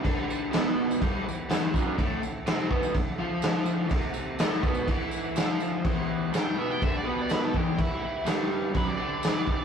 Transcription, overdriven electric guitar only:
X:1
M:4/4
L:1/8
Q:1/4=124
K:Em
V:1 name="Overdriven electric guitar" clef=bass
[D,D]2 [B,,B,]2 [G,,G,] E,, [E,,E,] [F,,F,] | [A,,A,] A,, [C,C] [B,,B,] A,, [=F,=F]3 | [C,C]2 [A,,A,] [B,,B,] [E,E]2 [=F,=F]2 | [E,,E,]2 [G,,G,] [B,,B,] [D,D] [B,,B,]2 [E,,E,] |
z2 [G,,G,]2 [F,,F,] [D,D]2 z |]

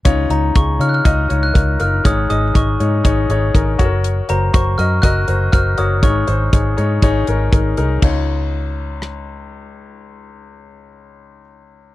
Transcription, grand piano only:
X:1
M:4/4
L:1/8
Q:1/4=120
K:Db
V:1 name="Grand piano"
[EFd] [EFd] [EFA] [EFd] [EFe] [EFd] [EFB] [EFB] | [EAd] [EAe] [EAe] [EAd] [EAd] [EAd] [EAB] [G=ABd]- | [G=ABd] [GBc] [GBc] [GBe] [GBe] [GBc] [GBc] [GBd] | [EAd] [EAc] [EAd] [EAd] [EAd] [EAB] [EAB] [EAB] |
[EFd]8- | [EFd]8 |]
V:2 name="Grand piano" clef=bass
D,3 z4 z | A,,3 z4 z | z8 | A,,3 z4 z |
D,,8- | D,,8 |]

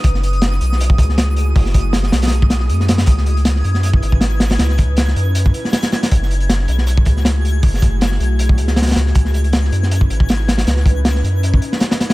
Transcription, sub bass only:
X:1
M:4/4
L:1/8
Q:"Swing 16ths" 1/4=158
K:C#m
V:1 name="Sub bass" clef=bass
F,,,3 B,,,2 C,,3 | F,,,3 B,,,3 F,,2 | C,,3 F,,2 G,,,3 | C,,3 F,,2 z3 |
F,,,3 B,,,2 C,,3 | F,,,3 B,,,2 C,,2 C,, | C,,3 F,,2 G,,,3 | C,,3 F,,2 z3 |]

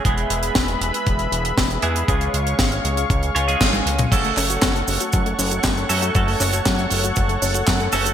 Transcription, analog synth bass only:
X:1
M:4/4
L:1/8
Q:1/4=118
K:F#m
V:1 name="Analog synth bass" clef=bass
E,,, E,,, E,,, E,,, E,,, E,,, E,,, E,, | C,, C,, G,,, C,, C,, C,, G,,, C,, | F,,, F,,, F,,, F,,, F,,, F,,, F,,, F,, | F,,, F,,, F,, F,,, F,,, F,,, F,, F,,, |]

